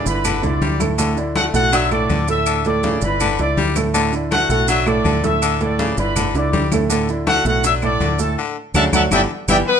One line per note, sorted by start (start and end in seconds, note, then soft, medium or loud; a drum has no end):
0.05 0.40 G1 loud
0.05 0.36 D3 medium
0.05 0.36 D4 medium
0.05 0.37 E4 medium
0.05 0.41 B4 medium
0.05 0.42 B5 medium
0.05 high conga soft
0.05 maracas medium
0.25 0.44 D3 medium
0.25 high conga soft
0.25 low conga medium
0.25 claves medium
0.25 maracas medium
0.42 0.60 C#2 medium
0.42 0.73 D3 medium
0.42 0.73 D4 loud
0.42 0.73 E4 medium
0.42 0.81 D5 medium
0.42 0.81 D6 medium
0.42 high conga soft
0.42 low conga medium
0.42 maracas soft
0.61 1.48 D2 medium
0.61 0.81 G3 medium
0.61 high conga medium
0.61 maracas soft
0.80 0.95 A2 medium
0.80 0.95 A3 medium
0.80 0.95 A4 medium
0.80 high conga medium
0.80 claves medium
0.80 maracas medium
0.98 1.14 A2 loud
0.98 1.18 D3 medium
0.98 1.14 A3 medium
0.98 1.14 A4 medium
0.98 high conga soft
0.98 maracas loud
1.17 1.47 D3 medium
1.17 1.47 D4 medium
1.17 1.48 E4 medium
1.17 high conga soft
1.17 maracas soft
1.35 1.55 A3 medium
1.35 1.45 F#4 medium
1.35 1.45 F#5 loud
1.35 high conga medium
1.35 claves medium
1.35 maracas soft
1.53 2.05 B1 loud
1.53 1.69 A2 medium
1.53 1.69 A3 loud
1.53 1.72 F#4 medium
1.53 1.69 A4 medium
1.53 1.72 F#5 loud
1.53 maracas medium
1.72 1.88 D3 medium
1.72 1.92 F#3 loud
1.72 1.88 D4 medium
1.72 1.88 F#4 medium
1.72 1.92 E5 loud
1.72 1.92 E6 medium
1.72 high conga soft
1.72 maracas medium
1.91 2.21 A2 loud
1.91 2.22 A3 loud
1.91 2.22 A4 medium
1.91 2.26 D5 loud
1.91 2.26 D6 medium
1.91 high conga soft
1.91 claves medium
1.91 maracas soft
2.09 2.96 D2 medium
2.09 2.29 D3 medium
2.09 high conga medium
2.09 maracas soft
2.28 2.58 A2 medium
2.28 2.59 A3 medium
2.28 2.59 A4 medium
2.28 2.63 E5 loud
2.28 2.63 E6 medium
2.28 maracas medium
2.46 2.66 D3 medium
2.46 high conga soft
2.46 claves medium
2.46 maracas medium
2.65 2.96 A2 medium
2.65 2.96 A3 medium
2.65 2.96 A4 medium
2.65 3.00 D5 loud
2.65 3.00 D6 medium
2.65 high conga soft
2.65 maracas soft
2.83 3.03 C#3 medium
2.83 high conga medium
2.83 maracas soft
3.01 3.36 G1 loud
3.01 3.33 D3 medium
3.01 3.33 D4 medium
3.01 3.33 E4 medium
3.01 3.37 B4 medium
3.01 3.38 B5 medium
3.01 high conga soft
3.01 maracas medium
3.20 3.40 D3 medium
3.20 high conga soft
3.20 low conga medium
3.20 claves medium
3.20 maracas medium
3.39 3.56 C#2 medium
3.39 3.69 D3 medium
3.39 3.70 D4 medium
3.39 3.70 E4 medium
3.39 3.74 D5 medium
3.39 3.75 D6 medium
3.39 high conga soft
3.39 maracas soft
3.57 4.44 D2 loud
3.57 3.77 G3 medium
3.57 high conga medium
3.57 maracas soft
3.76 3.91 A2 medium
3.76 3.91 A3 medium
3.76 3.92 A4 medium
3.76 high conga medium
3.76 claves medium
3.76 maracas medium
3.94 4.09 A2 medium
3.94 4.14 D3 medium
3.94 4.10 A3 medium
3.94 4.10 A4 medium
3.94 high conga soft
3.94 maracas loud
4.13 4.43 D3 medium
4.13 4.43 D4 medium
4.13 4.44 E4 medium
4.13 high conga soft
4.13 maracas soft
4.31 4.51 A3 medium
4.31 4.49 F#4 medium
4.31 4.49 F#5 loud
4.31 high conga medium
4.31 claves medium
4.31 maracas soft
4.49 5.01 B1 medium
4.49 4.65 A2 medium
4.49 4.65 A3 medium
4.49 4.68 F#4 medium
4.49 4.65 A4 loud
4.49 4.67 F#5 loud
4.49 maracas medium
4.68 4.83 D3 medium
4.68 4.88 F#3 medium
4.68 4.83 D4 medium
4.68 4.84 F#4 medium
4.68 4.86 E5 loud
4.68 4.86 E6 medium
4.68 high conga soft
4.68 maracas medium
4.86 5.17 A2 loud
4.86 5.17 A3 medium
4.86 5.17 A4 loud
4.86 5.24 D5 loud
4.86 5.24 D6 medium
4.86 high conga soft
4.86 claves medium
4.86 maracas soft
5.05 5.91 D2 loud
5.05 5.24 D3 medium
5.05 high conga medium
5.05 maracas soft
5.23 5.54 A2 medium
5.23 5.54 A3 medium
5.23 5.54 A4 medium
5.23 5.61 E5 loud
5.23 5.62 E6 medium
5.23 high conga medium
5.23 maracas medium
5.42 5.62 D3 medium
5.42 high conga soft
5.42 claves medium
5.42 maracas loud
5.60 5.91 A2 loud
5.60 5.91 A3 loud
5.60 5.91 A4 loud
5.60 5.96 D5 loud
5.60 5.96 D6 medium
5.60 high conga soft
5.60 maracas soft
5.79 5.99 C#3 medium
5.79 high conga medium
5.79 maracas soft
5.97 6.32 G1 medium
5.97 6.28 D3 medium
5.97 6.28 D4 medium
5.97 6.28 E4 medium
5.97 6.33 B4 medium
5.97 6.33 B5 medium
5.97 high conga soft
5.97 maracas medium
6.16 6.36 D3 medium
6.16 high conga soft
6.16 low conga medium
6.16 claves medium
6.16 maracas medium
6.34 6.51 C#2 medium
6.34 6.65 D3 loud
6.34 6.65 D4 medium
6.34 6.65 E4 medium
6.34 6.70 D5 medium
6.34 6.70 D6 medium
6.34 high conga soft
6.34 maracas soft
6.53 7.39 D2 medium
6.53 6.72 G3 medium
6.53 high conga medium
6.53 maracas soft
6.72 6.87 A2 medium
6.72 6.87 A3 medium
6.72 6.88 A4 medium
6.72 high conga medium
6.72 claves medium
6.72 maracas medium
6.90 7.06 A2 medium
6.90 7.09 D3 medium
6.90 7.06 A3 loud
6.90 7.06 A4 medium
6.90 high conga soft
6.90 maracas loud
7.09 7.39 D3 medium
7.09 7.39 D4 medium
7.09 7.39 E4 medium
7.09 high conga soft
7.09 maracas soft
7.27 7.46 A3 medium
7.27 7.45 F#4 medium
7.27 7.45 F#5 loud
7.27 high conga loud
7.27 claves medium
7.27 maracas soft
7.45 7.96 B1 loud
7.45 7.60 A2 medium
7.45 7.61 A3 medium
7.45 7.64 F#4 medium
7.45 7.61 A4 medium
7.45 7.64 F#5 loud
7.45 maracas medium
7.64 7.79 D3 medium
7.64 7.83 F#3 medium
7.64 7.79 D4 medium
7.64 7.79 F#4 medium
7.64 7.74 E5 loud
7.64 7.74 E6 medium
7.64 high conga soft
7.64 maracas loud
7.82 8.13 A2 loud
7.82 8.13 A3 loud
7.82 8.13 A4 loud
7.82 8.17 D5 loud
7.82 8.18 D6 medium
7.82 high conga soft
7.82 claves medium
7.82 maracas soft
8.00 8.35 D2 loud
8.00 8.20 D3 medium
8.00 high conga medium
8.00 maracas soft
8.19 8.34 A2 medium
8.19 8.34 A3 medium
8.19 8.35 A4 medium
8.19 8.37 A4 loud
8.19 8.37 A5 medium
8.19 maracas medium
8.38 8.58 D3 medium
8.74 8.88 D2 loud
8.74 8.94 C#3 medium
8.74 8.87 F#3 medium
8.74 8.87 A3 medium
8.74 8.87 D4 medium
8.74 8.84 E5 loud
8.74 8.84 F#5 loud
8.74 8.84 A5 loud
8.74 high conga loud
8.74 claves loud
8.74 maracas loud
8.93 9.07 D2 loud
8.93 9.05 F#3 loud
8.93 9.05 A3 loud
8.93 9.05 D4 loud
8.93 9.03 E5 loud
8.93 9.03 F#5 loud
8.93 9.03 A5 medium
8.93 high conga loud
8.93 claves loud
8.93 maracas loud
9.11 9.25 G1 loud
9.11 9.31 D3 medium
9.11 9.24 E3 medium
9.11 9.24 G3 loud
9.11 9.24 B3 loud
9.11 9.21 D5 loud
9.11 9.21 E5 loud
9.11 9.21 G5 loud
9.11 high conga loud
9.11 claves loud
9.11 maracas loud
9.48 9.62 G1 medium
9.48 9.61 E3 loud
9.48 9.60 G3 loud
9.48 9.68 G3 medium
9.48 9.61 B3 loud
9.48 9.58 D5 medium
9.48 9.58 E5 loud
9.48 9.58 G5 loud
9.48 high conga loud
9.48 claves medium
9.48 maracas loud
9.69 9.80 B3 medium
9.69 9.80 B4 loud